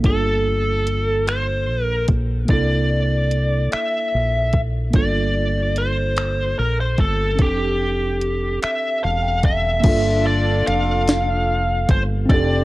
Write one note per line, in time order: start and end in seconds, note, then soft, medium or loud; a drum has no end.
0.01 2.43 A#3 medium
0.01 2.45 D4 medium
0.01 kick medium
0.01 closed hi-hat medium
0.05 1.70 G1 medium
0.05 2.46 F4 soft
0.05 1.28 A4 medium
0.05 2.47 A4 medium
0.87 closed hi-hat medium
1.27 1.84 C5 medium
1.27 finger snap loud
1.27 closed hi-hat medium
1.70 2.06 A#1 medium
1.84 2.05 A#4 medium
2.08 2.46 A#1 medium
2.08 kick medium
2.08 closed hi-hat medium
2.45 4.88 A#3 medium
2.45 4.89 D4 soft
2.45 kick medium
2.45 closed hi-hat medium
2.50 3.68 C2 medium
2.50 4.91 E4 medium
2.50 4.92 A4 medium
2.50 3.72 D5 medium
3.31 closed hi-hat medium
3.72 4.60 E5 medium
3.72 finger snap medium
3.72 muted fingered electric bass stroke soft
3.72 closed hi-hat medium
4.15 4.91 A#1 medium
4.53 kick medium
4.53 closed hi-hat medium
4.91 7.33 A#3 medium
4.91 7.35 D4 medium
4.91 kick medium
4.91 closed hi-hat medium
4.95 6.54 G1 medium
4.95 7.36 F4 soft
4.95 7.37 A4 medium
4.95 5.79 D5 medium
5.76 6.59 C5 medium
5.76 closed hi-hat medium
6.17 finger snap loud
6.17 closed hi-hat medium
6.59 6.95 A#1 medium
6.59 6.77 A#4 medium
6.81 7.00 C5 medium
6.98 7.40 G1 medium
6.98 7.41 A4 medium
6.98 kick medium
6.98 closed hi-hat medium
7.35 9.78 C4 medium
7.35 9.79 D4 soft
7.35 kick medium
7.35 closed hi-hat medium
7.40 8.58 F1 loud
7.40 9.81 G4 soft
7.40 8.59 G4 medium
7.40 9.82 A4 medium
8.21 closed hi-hat medium
8.62 9.00 E5 medium
8.62 finger snap loud
8.62 muted fingered electric bass stroke soft
8.62 closed hi-hat medium
9.03 9.81 E1 medium
9.03 9.45 F5 medium
9.03 9.21 A5 medium
9.23 9.42 G5 medium
9.43 10.26 E5 medium
9.43 9.81 F5 medium
9.43 kick medium
9.43 closed hi-hat medium
9.80 12.23 A#3 medium
9.80 12.24 D4 medium
9.80 11.84 A4 medium
9.80 kick loud
9.80 closed hi-hat medium
9.80 crash medium
9.84 10.62 G1 loud
9.84 11.84 D4 medium
9.84 11.84 F4 medium
9.84 12.25 F4 medium
9.88 12.27 A4 medium
10.27 10.64 D5 medium
10.67 11.85 F1 medium
10.67 11.90 F5 medium
10.67 closed hi-hat medium
11.08 snare loud
11.08 closed hi-hat medium
11.89 12.26 G1 medium
11.89 12.01 C5 medium
11.89 kick loud
11.89 closed hi-hat medium
12.25 12.64 C4 medium
12.25 12.64 D4 medium
12.25 12.64 G4 medium
12.25 kick loud
12.29 12.64 F1 loud
12.29 12.64 G4 medium
12.29 12.64 D5 medium
12.29 closed hi-hat medium
12.33 12.64 A4 medium